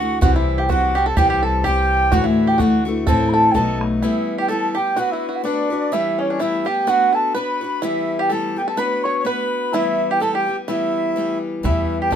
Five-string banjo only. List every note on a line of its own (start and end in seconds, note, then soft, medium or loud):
0.00 0.19 F#4 medium
0.22 0.34 F#4 medium
0.36 0.58 E4 medium
0.58 0.69 G4 medium
0.69 0.94 F#4 medium
0.95 1.05 G4 medium
1.06 1.16 A4 medium
1.17 1.29 G4 medium
1.30 1.42 G4 medium
1.43 1.63 A4 medium
1.64 2.08 G4 medium
2.12 2.24 F#4 medium
2.24 2.46 E4 medium
2.47 2.59 G4 medium
2.58 2.83 F#4 medium
3.07 3.31 A4 medium
3.34 3.53 A4 medium
3.55 3.79 A4 medium
4.02 4.40 E4 medium
4.38 4.49 G4 medium
4.48 4.73 A4 medium
4.75 4.95 G4 medium
4.96 5.12 F#4 medium
5.13 5.28 F#4 medium
5.29 5.45 F#4 medium
5.45 5.94 D4 medium
5.93 6.19 E4 medium
6.19 6.28 C#4 medium
6.30 6.40 D4 medium
6.40 6.64 E4 medium
6.66 6.86 G4 medium
6.88 7.12 F#4 medium
7.13 7.33 A4 medium
7.34 7.79 B4 medium
7.82 8.17 E4 medium
8.19 8.31 G4 medium
8.29 8.64 A4 medium
8.68 8.77 A4 medium
8.77 9.02 B4 medium
9.05 9.25 C#5 medium
9.26 9.71 B4 medium
9.74 10.08 E4 medium
10.11 10.21 G4 medium
10.21 10.35 A4 medium
10.35 10.57 G4 medium
10.68 11.38 E4 medium
11.65 11.99 E4 medium
12.02 12.13 G4 medium
12.12 12.16 A4 medium